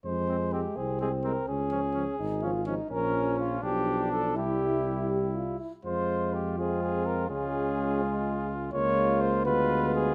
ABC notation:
X:1
M:6/8
L:1/8
Q:3/8=83
K:Fm
V:1 name="Cornet"
c2 G A A B | A4- A z | B2 F G2 =A | G3 z3 |
c2 G A A B | A4- A z | [K:Dblyd] d2 c =B2 A |]
V:2 name="French horn"
A,3 C3 | D3 E F E | D3 =D3 | =E3 G F E |
z3 C3 | D3 A,3 | [K:Dblyd] B,3 =B,3 |]
V:3 name="Trumpet"
z C C z C C | z D D z D D | D3 =D3 | =E4- E z |
F3 F3 | F6 | [K:Dblyd] F3 F3 |]
V:4 name="Trombone" clef=bass
z A, A, z A, A, | z F, F, z F, F, | F,3 F,3 | G,4- G, z |
A,3 A,3 | A,6 | [K:Dblyd] A,3 A,3 |]
V:5 name="Tuba" clef=bass
F,,3 C,,3 | D,,3 A,,,3 | B,,,3 =B,,,3 | C,,4- C,, z |
F,,6 | D,,6 | [K:Dblyd] D,,3 =D,,3 |]